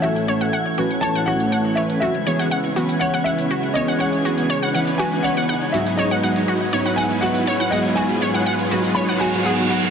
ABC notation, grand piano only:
X:1
M:4/4
L:1/8
Q:1/4=121
K:C#m
V:1 name="Grand piano"
e4 a f2 e | e4 f e2 d | c4 g f2 e | d4 g f2 d |
g4 b g f f |]